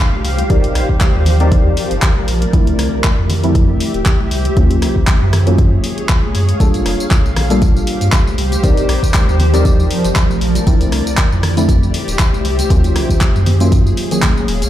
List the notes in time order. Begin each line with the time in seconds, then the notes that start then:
Already playing: G3 A#3 D4 F4 G4 A4 C5 F5
0.13 high conga
0.24 C2 F3, open hi-hat
0.38 closed hi-hat, high conga
0.50 C2 C4 D#4 G4 A#4 D5, kick, closed hi-hat
0.64 closed hi-hat
0.75 A#1, cross-stick, open hi-hat
0.89 kick
0.94 A#4
1.01 kick, clap, closed hi-hat, high conga
1.15 D#2
1.25 D5, open hi-hat, low conga
1.40 C4 D#4 G4 A#4 D5, closed hi-hat, high conga
1.52 kick, closed hi-hat
1.77 open hi-hat
1.91 G1, closed hi-hat
2.02 kick, clap, closed hi-hat
2.16 high conga
2.28 A#1, open hi-hat
2.42 closed hi-hat, high conga
2.53 D2 D3 F3 A3 C4 E4 G4, kick, closed hi-hat
2.67 closed hi-hat
2.73 E5
2.79 C2, cross-stick, open hi-hat
3.04 kick, clap, closed hi-hat, high conga
3.18 F2
3.30 open hi-hat, low conga
3.43 D3 F3 A3 C4 E4 C5, closed hi-hat, high conga
3.55 kick, closed hi-hat
3.80 open hi-hat
3.94 D1, closed hi-hat
4.06 kick, clap, closed hi-hat
4.20 high conga
4.31 C2, open hi-hat
4.45 closed hi-hat, high conga
4.57 D#2 D#3 F#3 A#3 C#4 F4 G#4, kick, closed hi-hat
4.71 closed hi-hat
4.82 C#2 C#5, cross-stick, open hi-hat
4.96 kick
5.07 kick, clap, closed hi-hat, high conga
5.22 F#2
5.33 cross-stick, open hi-hat, low conga
5.47 D#3 F#3 A#3 C#4 F4 F5, closed hi-hat, high conga
5.58 kick, closed hi-hat
5.84 open hi-hat
5.98 closed hi-hat
6.09 kick, clap, closed hi-hat
6.23 high conga
6.35 F#2, open hi-hat
6.48 closed hi-hat, high conga
6.60 G1 G3 A#3 D4 F4 G4 A4, kick, closed hi-hat, tambourine
6.74 closed hi-hat, tambourine
6.86 F1, cross-stick, open hi-hat
7.00 tambourine
7.11 C5, kick, clap, closed hi-hat, tambourine, high conga
7.25 A#1, tambourine
7.36 cross-stick, open hi-hat, low conga
7.50 G3 A#3 D4 F4 A4, closed hi-hat, tambourine, high conga
7.62 kick, closed hi-hat, tambourine
7.77 tambourine
7.87 open hi-hat
8.01 G2, closed hi-hat, tambourine
8.12 kick, clap, closed hi-hat, tambourine
8.27 tambourine, high conga
8.38 C2 F3, open hi-hat
8.52 closed hi-hat, tambourine, high conga
8.63 C2 C4 D#4 G4 A#4 D5, kick, closed hi-hat, tambourine
8.77 closed hi-hat, tambourine
8.89 A#1, cross-stick, open hi-hat
9.03 kick, tambourine
9.09 A#4
9.14 kick, clap, closed hi-hat, tambourine, high conga
9.28 D#2, tambourine
9.40 D5, open hi-hat, low conga
9.54 C4 D#4 G4 A#4 D5, closed hi-hat, tambourine, high conga
9.65 kick, closed hi-hat, tambourine
9.80 tambourine
9.91 open hi-hat
10.04 G1, closed hi-hat, tambourine
10.16 kick, clap, closed hi-hat, tambourine
10.30 tambourine, high conga
10.41 A#1, open hi-hat
10.55 closed hi-hat, tambourine, high conga
10.67 D2 D3 F3 A3 C4 E4 G4, kick, closed hi-hat, tambourine
10.81 closed hi-hat, tambourine
10.92 C2, cross-stick, open hi-hat
11.07 tambourine
11.17 kick, clap, closed hi-hat, tambourine, high conga
11.32 F2, tambourine
11.39 C5
11.43 cross-stick, open hi-hat, low conga
11.57 D3 F3 A3 C4 E4 E5, closed hi-hat, tambourine, high conga
11.69 kick, closed hi-hat, tambourine
11.83 tambourine
11.94 open hi-hat
12.08 D1, closed hi-hat, tambourine
12.19 kick, clap, closed hi-hat, tambourine
12.33 tambourine, high conga
12.45 C2, open hi-hat
12.59 closed hi-hat, tambourine, high conga
12.70 D#2 D#3 F#3 A#3 C#4 F4 G#4, kick, closed hi-hat, tambourine
12.84 closed hi-hat, tambourine
12.96 C#2, cross-stick, open hi-hat
13.10 kick, tambourine
13.21 kick, clap, closed hi-hat, tambourine, high conga
13.35 F#2, tambourine
13.41 C#5
13.46 open hi-hat, low conga
13.60 D#3 F#3 A#3 C#4 F4 F5, closed hi-hat, tambourine, high conga
13.72 kick, closed hi-hat, tambourine
13.87 tambourine
13.97 open hi-hat
14.11 D#3 F#3 A#3 C#4 G#4, closed hi-hat, tambourine
14.22 kick, clap, closed hi-hat, tambourine
14.36 tambourine, high conga
14.48 D#1, open hi-hat
14.62 C#2, closed hi-hat, tambourine, high conga